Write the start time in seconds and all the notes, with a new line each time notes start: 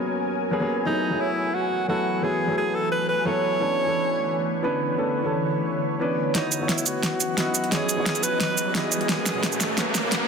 Already playing: F#3 A#3 B3 C#4 F#4 G#4 A#4 C#5 G#5
0.51 F#3 A#3 B3 C#4 G#4
0.60 F#3 A#3 B3 C#4 G#4
0.85 E3 F#3 A3 B3 D#4 E4 F#4 G#4 B4
1.10 F#3 A3 B3 E4 G#4
1.21 E4
1.55 F#4
1.88 F#3 A3 B3 E4 F#4 A4
2.22 F#3 A3 B3 E4 G#4
2.47 F#3 A3 B3 E4 G#4
2.58 G#4
2.75 A4
2.92 B4
3.09 B4
3.25 F#3 A3 B3 E4 A4 C#5
3.60 D3 E3 B3 C#4 D4 A4 C#5
3.85 E3 B3 C#4 D4 A4
4.62 E3 B3 C#4 D4 B4
4.97 E3 B3 C#4 D4 A4
5.22 E3 B3 C#4 D4 A4
6.00 E3 B3 C#4 D4 B4
6.34 E3 F#3 B3 C#4 D#4 E4 F#4 B4 C#5 D#5, snare, closed hi-hat, riser
6.52 closed hi-hat, cabasa
6.59 B3 D#4 E4 F#4
6.63 C#5
6.69 E4, snare, closed hi-hat
6.78 closed hi-hat, cabasa
6.86 F#4, closed hi-hat, cabasa
7.03 snare, closed hi-hat
7.20 closed hi-hat, cabasa
7.37 B3 D#4 E4 F#4 D#5, snare, closed hi-hat
7.55 closed hi-hat, cabasa
7.64 closed hi-hat
7.71 B3 D#4 E4 F#4 G#4 C#5, snare, closed hi-hat
7.89 closed hi-hat, cabasa
7.96 B3 D#4 E4 F#4
8.00 C#5
8.06 snare, closed hi-hat
8.15 closed hi-hat, cabasa
8.23 B4, closed hi-hat, cabasa
8.40 B4, snare, closed hi-hat
8.58 closed hi-hat, cabasa
8.74 B3 D#4 E4 F#4 G#4 D#5, snare, closed hi-hat
8.92 closed hi-hat, cabasa
9.01 closed hi-hat
9.08 G#3 A#3 C#4 F#4 G#4 B4 C#5 A#5, snare, closed hi-hat
9.26 snare, closed hi-hat, cabasa
9.33 A#2 C#4 F#4 G#4 B4
9.43 snare, closed hi-hat
9.52 closed hi-hat, cabasa
9.61 snare, closed hi-hat, cabasa
9.77 A#3 C#4 F#4 G#4 B4, snare, closed hi-hat
9.95 snare, closed hi-hat, cabasa
10.02 A#2 C#4 F#4 G#4 B4
10.12 snare, closed hi-hat